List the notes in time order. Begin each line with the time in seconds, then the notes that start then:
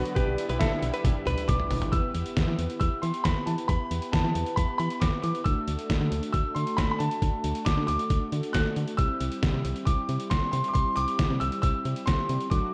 Already playing: D3 F#3 B3 D4 F#4 B4 D5
0.05 closed hi-hat
0.15 B1 G3 D4 E4 G4 B4 D5, kick, closed hi-hat
0.27 B1
0.38 closed hi-hat
0.49 B1 B4, closed hi-hat
0.59 B1 A4 E5, kick, snare, closed hi-hat
0.82 B1, closed hi-hat
0.94 B4, closed hi-hat
1.04 B1, kick, closed hi-hat, high tom
1.26 B1 B4, closed hi-hat, mid tom
1.38 closed hi-hat
1.48 B1 D6, kick, closed hi-hat, mid tom
1.60 mid tom
1.70 B1, floor tom, open hi-hat
1.82 closed hi-hat, floor tom
1.92 E2 B3 E4 G4 B4 E6, kick, closed hi-hat
2.15 E2, closed hi-hat
2.26 closed hi-hat
2.37 E2, kick, snare, closed hi-hat
2.48 E3
2.59 E2, closed hi-hat
2.70 closed hi-hat
2.80 E2 E6, kick, closed hi-hat
3.02 E3 C6, closed hi-hat
3.14 closed hi-hat
3.24 E2 B5, kick, snare, closed hi-hat
3.46 E3 A5, closed hi-hat
3.58 closed hi-hat
3.68 E2 B5, kick, closed hi-hat
3.91 E2, closed hi-hat
4.02 closed hi-hat
4.12 E2 A5, kick, snare, closed hi-hat
4.24 E3
4.35 E2, closed hi-hat
4.46 closed hi-hat
4.56 E2 B5, kick, closed hi-hat
4.78 E3 B5, closed hi-hat
4.90 closed hi-hat
5.00 E2 D6, kick, snare, closed hi-hat
5.22 E3 D6, closed hi-hat
5.35 closed hi-hat
5.44 D2 A3 D4 F#4 A4 E6, kick, closed hi-hat
5.68 D2, closed hi-hat
5.79 closed hi-hat
5.90 D2, kick, snare, closed hi-hat
6.01 D3
6.11 D2, closed hi-hat
6.23 closed hi-hat
6.33 D2 E6, kick, closed hi-hat
6.55 D3 C6, closed hi-hat
6.67 closed hi-hat
6.77 D2 B5, kick, snare, closed hi-hat
6.92 B5
6.99 D3 A5, closed hi-hat
7.11 closed hi-hat
7.22 D2, kick, closed hi-hat
7.44 D2, closed hi-hat
7.55 closed hi-hat
7.65 D2 D6, kick, snare, closed hi-hat
7.77 D3
7.87 D2 D6, closed hi-hat
7.99 closed hi-hat
8.10 D2, kick, closed hi-hat
8.32 D3, closed hi-hat
8.43 closed hi-hat
8.53 D2 F#6, kick, snare, closed hi-hat
8.76 D3, closed hi-hat
8.88 closed hi-hat
8.97 C2 G3 C4 E4 G4 E6, kick, closed hi-hat
9.21 C2, closed hi-hat
9.32 closed hi-hat
9.43 C2, kick, snare, closed hi-hat
9.54 C3
9.65 C2, closed hi-hat
9.76 closed hi-hat
9.85 C2 D6, kick, closed hi-hat
10.09 C3, closed hi-hat
10.20 closed hi-hat
10.30 C2 C6, kick, snare, closed hi-hat
10.52 C3 C6, closed hi-hat
10.64 closed hi-hat
10.68 D6
10.73 C2 C6, kick, closed hi-hat
10.96 C2 D6, closed hi-hat
11.08 closed hi-hat
11.19 C2, kick, snare, closed hi-hat
11.30 C3
11.40 C2 E6, closed hi-hat
11.52 closed hi-hat
11.62 C2 E6, kick, closed hi-hat
11.85 C3, closed hi-hat
11.96 closed hi-hat
12.06 C2 C6, kick, snare, closed hi-hat
12.29 C3, closed hi-hat
12.41 closed hi-hat
12.50 D2 F#3 A3 D4 F#4 D6, kick, closed hi-hat